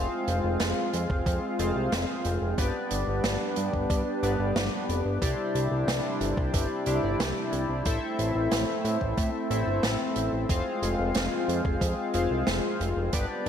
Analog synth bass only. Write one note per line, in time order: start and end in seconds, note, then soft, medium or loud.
0.28 0.41 F1 medium
0.44 0.57 F1 medium
0.61 0.74 F1 loud
0.94 1.07 F2 medium
1.10 1.23 F1 medium
1.26 1.40 F2 loud
1.59 1.73 F1 loud
1.76 1.89 C2 medium
1.92 2.06 F1 loud
2.25 2.38 F1 medium
2.42 2.55 F1 medium
2.58 2.71 G1 loud
2.91 3.04 G1 medium
3.08 3.21 G1 medium
3.24 3.37 G1 loud
3.57 3.70 G2 medium
3.73 3.87 G1 medium
3.90 4.03 G2 medium
4.23 4.36 G1 medium
4.39 4.53 G1 medium
4.56 4.69 G1 loud
4.89 5.02 F1 medium
5.05 5.19 G1 medium
5.22 5.35 C2 loud
5.55 5.68 C2 medium
5.71 5.85 C2 medium
5.88 6.01 C2 loud
6.21 6.34 G1 medium
6.37 6.51 C2 medium
6.54 6.67 G1 loud
6.87 7.00 C2 medium
7.03 7.16 G1 medium
7.20 7.33 C2 loud
7.53 7.66 C2 medium
7.69 7.82 C2 medium
7.86 7.99 A1 loud
8.19 8.32 A1 medium
8.35 8.48 A1 medium
8.52 8.65 A1 loud
8.85 8.98 A2 medium
9.01 9.14 A1 medium
9.18 9.31 A2 loud
9.50 9.64 A1 medium
9.67 9.80 G1 medium
9.83 9.97 A1 loud
10.16 10.30 A1 medium
10.33 10.46 A1 medium
10.49 10.63 F1 loud
10.82 10.96 F1 medium
10.99 11.12 F1 medium
11.15 11.29 F1 loud
11.48 11.62 F2 medium
11.65 11.78 F1 medium
11.81 11.95 F2 loud
12.14 12.27 F1 medium
12.31 12.44 C2 medium
12.47 12.60 F1 loud
12.80 12.93 F1 medium
12.97 13.10 F1 medium
13.13 13.26 G1 loud